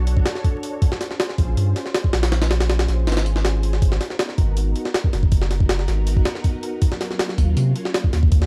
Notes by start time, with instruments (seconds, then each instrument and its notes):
Already playing: sub bass B1, string machine D4 F#4 A4 C#5
0.07 open hi-hat
0.17 kick
0.26 snare, open hi-hat
0.35 snare
0.44 kick, open hi-hat
0.63 open hi-hat
0.82 kick, open hi-hat
0.92 snare
1.01 snare, open hi-hat
1.11 snare
1.20 snare, open hi-hat
1.29 snare
1.38 sub bass A#1, kick, open hi-hat
1.57 sub bass G2, open hi-hat
1.76 snare, open hi-hat
1.86 snare
1.94 snare, open hi-hat
2.04 kick
2.13 sub bass A#1, snare, open hi-hat
2.23 snare, open hi-hat
2.32 snare, open hi-hat
2.42 snare, open hi-hat
2.51 snare, open hi-hat
2.60 string machine C#4 F4 G#4 C5, snare, open hi-hat
2.70 snare, open hi-hat
2.79 snare, open hi-hat
2.88 sub bass A#1, snare, open hi-hat
3.07 sub bass G#1, snare, open hi-hat
3.12 snare, open hi-hat
3.17 snare, open hi-hat
3.26 open hi-hat
3.36 snare
3.45 snare, open hi-hat
3.63 open hi-hat
3.73 snare
3.82 sub bass G#1, kick, open hi-hat
3.92 snare
4.01 snare, open hi-hat
4.10 snare
4.19 snare, open hi-hat
4.29 snare
4.38 sub bass G#1, kick, open hi-hat
4.57 open hi-hat
4.76 open hi-hat
4.85 snare
4.94 snare, open hi-hat
5.04 kick
5.13 sub bass F#1, snare, open hi-hat
5.23 kick
5.32 kick, open hi-hat
5.42 snare
5.51 snare, open hi-hat
5.60 string machine B3 D#4 F#4 A#4, kick
5.69 snare, open hi-hat
5.79 snare
5.88 sub bass G#1, snare, open hi-hat
6.07 open hi-hat
6.17 kick
6.25 snare, open hi-hat
6.35 snare
6.44 kick, open hi-hat
6.63 open hi-hat
6.82 kick, open hi-hat
6.92 snare
7.01 snare, open hi-hat
7.11 snare
7.19 snare, open hi-hat
7.29 snare
7.38 sub bass D#2, kick, open hi-hat
7.57 sub bass C3, open hi-hat
7.76 open hi-hat
7.85 snare
7.94 snare, open hi-hat
8.04 kick
8.13 sub bass D#2, snare, open hi-hat
8.23 kick
8.32 kick, open hi-hat
8.42 snare